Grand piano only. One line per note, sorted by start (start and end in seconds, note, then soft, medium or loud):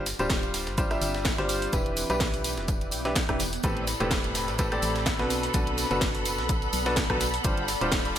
0.19 0.75 G3 medium
0.19 0.75 D4 medium
0.19 0.75 F4 medium
0.19 0.75 G4 medium
0.19 0.75 C5 medium
0.78 0.89 G3 loud
0.78 0.89 D4 medium
0.78 0.89 F4 medium
0.78 0.89 G4 medium
0.78 0.89 C5 loud
0.91 1.35 G3 medium
0.91 1.35 D4 medium
0.91 1.35 F4 medium
0.91 1.35 G4 medium
0.91 1.35 E5 loud
1.38 1.71 G3 medium
1.38 1.71 D4 medium
1.38 1.70 F4 medium
1.38 1.70 G4 medium
1.38 1.70 C5 loud
1.73 2.07 E3 medium
1.73 2.07 D4 medium
1.73 2.07 E4 medium
1.73 2.07 G4 medium
1.73 2.07 B4 medium
2.10 3.02 E3 medium
2.10 3.02 D4 medium
2.10 3.02 E4 medium
2.10 3.02 G4 medium
2.10 3.02 B4 medium
3.05 3.15 E3 medium
3.05 3.15 D4 medium
3.05 3.15 E4 medium
3.05 3.15 G4 medium
3.05 3.15 B4 medium
3.29 3.39 E3 medium
3.29 3.39 D4 medium
3.29 3.39 E4 medium
3.29 3.39 G4 medium
3.29 3.39 B4 medium
3.64 3.82 A2 medium
3.64 3.82 C4 medium
3.64 3.82 G4 medium
3.64 3.82 A4 medium
3.64 3.82 B4 loud
4.00 4.56 A2 medium
4.00 4.56 C4 medium
4.00 4.56 G4 medium
4.00 4.56 A4 medium
4.00 4.56 B4 medium
4.59 4.70 A2 medium
4.59 4.70 C4 medium
4.59 4.70 G4 medium
4.59 4.70 A4 medium
4.59 4.70 B4 loud
4.72 5.16 A2 medium
4.72 5.16 C4 medium
4.72 5.16 G4 medium
4.72 5.16 A4 medium
4.72 5.16 D5 loud
5.19 5.51 B2 medium
5.19 5.51 D4 medium
5.19 5.51 F#4 medium
5.19 5.51 A4 medium
5.19 5.51 B4 loud
5.54 5.88 B2 medium
5.54 5.88 D4 medium
5.54 5.88 F#4 medium
5.54 5.88 A4 medium
5.54 5.88 B4 medium
5.91 6.83 B2 medium
5.91 6.83 D4 medium
5.91 6.83 F#4 medium
5.91 6.83 A4 medium
5.91 6.83 B4 medium
6.86 6.96 B2 medium
6.86 6.96 D4 medium
6.86 6.96 F#4 medium
6.86 6.96 A4 medium
6.86 6.96 B4 loud
7.10 7.20 B2 medium
7.10 7.20 D4 medium
7.10 7.20 F#4 medium
7.10 7.20 A4 medium
7.10 7.20 B4 medium
7.44 7.63 G3 medium
7.44 7.63 D4 medium
7.44 7.63 F4 medium
7.44 7.63 G4 medium
7.44 7.63 C5 medium
7.81 8.19 G3 medium
7.81 8.19 D4 medium
7.81 8.19 F4 medium
7.81 8.19 G4 medium
7.81 8.19 C5 medium